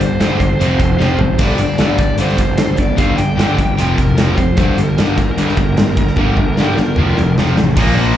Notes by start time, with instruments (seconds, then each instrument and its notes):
0.00 picked electric bass G1, overdriven electric guitar G2 D3, lead electric guitar C5, closed hi-hat
0.20 picked electric bass G1, overdriven electric guitar G2 D3 G3, snare, closed hi-hat
0.39 picked electric bass G1, overdriven electric guitar G2 D3, kick, closed hi-hat
0.59 picked electric bass F1, overdriven electric guitar F2 C3 F3, closed hi-hat
0.79 picked electric bass F1, overdriven electric guitar F2 C3, kick, closed hi-hat
0.98 picked electric bass F1, overdriven electric guitar F2 C3 F3, snare
1.19 picked electric bass A1, overdriven electric guitar F2 C3, lead electric guitar C5, floor tom
1.38 picked electric bass G1, overdriven electric guitar G2 D3 G3, lead electric guitar D5, kick, closed hi-hat, crash
1.58 picked electric bass G1, overdriven electric guitar G2 D3, closed hi-hat
1.78 picked electric bass G1, overdriven electric guitar G2 D3 G3, lead electric guitar D5, snare, closed hi-hat
1.98 picked electric bass G1, overdriven electric guitar G2 D3, kick, closed hi-hat
2.18 picked electric bass G1, overdriven electric guitar G2 D3 G3, lead electric guitar C5, closed hi-hat
2.29 snare
2.37 picked electric bass G1, overdriven electric guitar G2 D3, kick, closed hi-hat
2.58 picked electric bass G1, overdriven electric guitar G2 D3, snare, closed hi-hat
2.76 picked electric bass G1, overdriven electric guitar G2 D3, lead electric guitar D5, kick, closed hi-hat
2.96 picked electric bass G1, overdriven electric guitar G2 D3 G3, lead electric guitar F5, kick, closed hi-hat
3.16 picked electric bass G1, overdriven electric guitar G2 D3, lead electric guitar G5, closed hi-hat
3.36 picked electric bass G1, overdriven electric guitar G2 D3 G3, snare, closed hi-hat
3.58 picked electric bass G1, overdriven electric guitar G2 D3, kick, closed hi-hat
3.77 picked electric bass F1, overdriven electric guitar F2 C3 F3, closed hi-hat
3.96 picked electric bass F1, overdriven electric guitar F2 C3, lead electric guitar A#4, kick, closed hi-hat
4.17 picked electric bass F1, overdriven electric guitar F2 C3 F3, snare, closed hi-hat
4.37 picked electric bass F1, overdriven electric guitar F2 C3, lead electric guitar C5, kick, closed hi-hat
4.57 picked electric bass G1, overdriven electric guitar G2 D3 G3, lead electric guitar C5, kick, closed hi-hat
4.77 picked electric bass G1, overdriven electric guitar G2 D3, lead electric guitar A#4, closed hi-hat
4.98 picked electric bass G1, overdriven electric guitar G2 D3 G3, snare, closed hi-hat
5.17 picked electric bass G1, overdriven electric guitar G2 D3, kick, closed hi-hat
5.38 picked electric bass G1, overdriven electric guitar G2 D3 G3, closed hi-hat
5.48 snare
5.57 picked electric bass G1, overdriven electric guitar G2 D3, kick, closed hi-hat
5.77 picked electric bass G1, overdriven electric guitar G2 D3, snare, closed hi-hat
5.97 picked electric bass G1, overdriven electric guitar G2 D3, kick, closed hi-hat
6.07 snare
6.16 picked electric bass G1, overdriven electric guitar G2 D3 G3, kick, high tom
6.37 picked electric bass G1, overdriven electric guitar G2 D3, kick
6.57 picked electric bass G1, overdriven electric guitar G2 D3 G3, snare
6.77 picked electric bass G1, overdriven electric guitar G2 D3, snare
6.96 picked electric bass F1, overdriven electric guitar F2 C3 F3, mid tom
7.17 picked electric bass F1, overdriven electric guitar F2 C3, snare
7.37 picked electric bass F1, overdriven electric guitar F2 C3 F3, snare
7.56 picked electric bass A1, overdriven electric guitar F2 C3, snare
7.76 picked electric bass A#1, overdriven electric guitar A#2 F3 A#3, kick, crash
7.96 picked electric bass A#1